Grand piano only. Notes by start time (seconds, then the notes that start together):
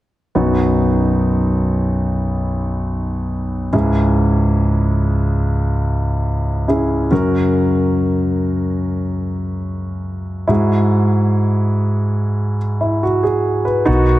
0.35 B1 F#2 B3 D#4 F#4
3.73 C#2 G#2 C#4 E4 G#4
6.68 C#4 E4 G#4
7.11 F#2 C#3 C#4 F#4 A#4
10.47 G#2 G#3 E4 F#4 G#4
12.81 E4
13.03 F#4
13.23 G#4
13.65 B4
13.85 B3 D#4 F#4